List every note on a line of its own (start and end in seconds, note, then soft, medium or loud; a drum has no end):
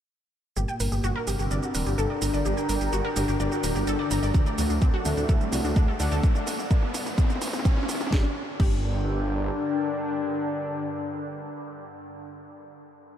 0.56 0.65 G1 medium
0.56 6.28 G2 medium
0.56 6.28 D3 medium
0.56 1.29 A#3 loud
0.56 4.31 D4 medium
0.56 0.61 G4 medium
0.56 4.31 A#4 medium
0.56 4.31 G5 medium
0.56 4.31 A#5 medium
0.56 mid tom soft
0.56 riser medium
0.56 shaker soft
0.68 0.76 G5 medium
0.68 shaker soft
0.80 0.88 G1 medium
0.80 0.88 A#4 medium
0.80 open hi-hat loud
0.80 shaker medium
0.92 1.00 G1 medium
0.92 1.00 G4 medium
0.92 mid tom soft
0.92 shaker soft
1.04 1.12 G1 loud
1.04 1.08 F#4 loud
1.04 shaker soft
1.16 1.23 A#4 loud
1.27 1.35 G1 medium
1.27 2.12 C4 loud
1.27 1.38 G4 medium
1.27 open hi-hat medium
1.27 mid tom soft
1.27 shaker medium
1.39 1.47 G1 medium
1.39 1.47 G4 medium
1.39 shaker soft
1.51 1.59 G1 loud
1.51 1.56 D5 medium
1.51 mid tom soft
1.51 shaker soft
1.63 1.71 F#4 medium
1.63 shaker soft
1.75 1.83 D1 medium
1.75 1.82 A#4 medium
1.75 open hi-hat loud
1.75 shaker medium
1.86 1.94 G1 medium
1.86 1.94 G4 medium
1.86 shaker soft
1.98 2.06 G1 loud
1.98 2.03 A4 loud
1.98 shaker soft
2.10 2.21 D5 medium
2.22 2.30 G1 medium
2.22 3.07 D4 loud
2.22 2.33 A#5 medium
2.22 open hi-hat medium
2.22 mid tom medium
2.22 shaker medium
2.34 2.42 G1 medium
2.34 2.45 D5 medium
2.34 shaker soft
2.45 2.54 G1 loud
2.45 2.50 G4 medium
2.45 mid tom medium
2.45 shaker soft
2.57 2.65 G5 medium
2.57 shaker soft
2.69 2.77 G1 loud
2.69 2.77 A#4 medium
2.69 open hi-hat loud
2.69 shaker medium
2.81 2.89 G1 medium
2.81 2.89 G4 medium
2.81 shaker soft
2.93 3.01 G1 loud
2.93 2.97 F#4 loud
2.93 shaker soft
3.04 3.12 A#4 loud
3.16 3.24 G1 medium
3.16 4.36 D4 loud
3.16 3.27 G4 medium
3.16 open hi-hat medium
3.16 mid tom medium
3.16 shaker medium
3.28 3.36 G1 medium
3.28 3.36 G4 medium
3.28 shaker soft
3.40 3.48 G1 loud
3.40 3.45 D5 medium
3.40 mid tom medium
3.40 shaker soft
3.52 3.59 F#4 medium
3.52 shaker soft
3.63 3.72 D1 medium
3.63 3.71 A#4 medium
3.63 open hi-hat loud
3.63 shaker medium
3.75 3.83 G1 medium
3.75 3.83 G4 medium
3.75 mid tom medium
3.75 shaker soft
3.87 3.95 G1 loud
3.87 3.92 A4 loud
3.87 shaker soft
3.99 4.10 D5 medium
4.11 4.19 G1 medium
4.11 4.22 A#5 medium
4.11 open hi-hat medium
4.11 mid tom medium
4.11 shaker medium
4.23 4.31 G1 medium
4.23 4.34 D5 medium
4.23 shaker soft
4.34 4.43 D2 loud
4.34 4.96 A3 loud
4.34 6.21 D4 medium
4.34 4.39 D4 medium
4.34 6.21 A4 medium
4.34 6.21 F#5 medium
4.34 6.21 A5 medium
4.34 kick loud
4.34 mid tom medium
4.34 shaker soft
4.46 4.54 D5 medium
4.46 shaker soft
4.58 4.66 D2 loud
4.58 4.66 F#4 medium
4.58 open hi-hat loud
4.58 mid tom medium
4.58 shaker medium
4.70 4.78 D2 medium
4.70 4.78 D4 medium
4.70 shaker soft
4.82 4.90 D2 loud
4.82 4.86 C4 loud
4.82 kick loud
4.82 mid tom medium
4.82 shaker soft
4.94 5.01 F#4 loud
5.05 5.13 D2 medium
5.05 5.90 A3 loud
5.05 5.16 D4 medium
5.05 open hi-hat medium
5.05 mid tom medium
5.05 shaker medium
5.17 5.25 D2 medium
5.17 5.25 D4 medium
5.17 shaker soft
5.29 5.37 D2 loud
5.29 5.34 A4 medium
5.29 kick loud
5.29 mid tom medium
5.29 shaker soft
5.41 5.49 C4 medium
5.41 shaker soft
5.52 5.61 C2 medium
5.52 5.60 F#4 medium
5.52 open hi-hat loud
5.52 mid tom medium
5.52 shaker medium
5.64 5.72 D2 medium
5.64 5.72 D4 medium
5.64 shaker soft
5.76 5.84 D2 loud
5.76 5.81 D4 loud
5.76 kick loud
5.76 mid tom medium
5.76 shaker soft
5.88 5.99 A4 medium
6.00 6.08 D2 medium
6.00 6.23 D4 loud
6.00 6.11 F#5 medium
6.00 open hi-hat medium
6.00 mid tom medium
6.00 shaker medium
6.12 6.20 D2 medium
6.12 6.23 A4 medium
6.12 shaker soft
6.23 kick loud
6.23 mid tom medium
6.23 shaker soft
6.35 mid tom medium
6.35 shaker soft
6.47 open hi-hat loud
6.47 mid tom medium
6.47 shaker medium
6.59 mid tom medium
6.59 shaker soft
6.71 kick loud
6.71 mid tom loud
6.71 shaker soft
6.83 mid tom medium
6.94 open hi-hat loud
6.94 mid tom loud
6.94 shaker medium
7.06 mid tom medium
7.06 shaker soft
7.18 kick loud
7.18 mid tom loud
7.18 shaker soft
7.24 mid tom medium
7.30 mid tom medium
7.30 shaker soft
7.36 mid tom medium
7.42 open hi-hat loud
7.42 mid tom loud
7.42 shaker medium
7.47 mid tom medium
7.53 mid tom medium
7.53 shaker soft
7.59 mid tom medium
7.65 kick loud
7.65 mid tom loud
7.65 shaker soft
7.71 mid tom medium
7.77 mid tom medium
7.83 mid tom medium
7.89 open hi-hat loud
7.89 mid tom loud
7.89 shaker medium
7.95 mid tom medium
8.01 mid tom loud
8.01 shaker soft
8.07 mid tom loud
8.12 8.26 G1 loud
8.12 11.61 G2 medium
8.12 11.61 D3 medium
8.12 11.61 D4 medium
8.12 8.26 D4 loud
8.12 11.61 G4 medium
8.12 8.26 G4 medium
8.12 11.61 A#4 medium
8.12 11.61 G5 medium
8.12 kick loud
8.12 snare medium
8.60 9.50 G1 medium
8.60 12.08 D4 loud
8.60 8.73 G4 loud
8.60 kick loud
8.60 crash medium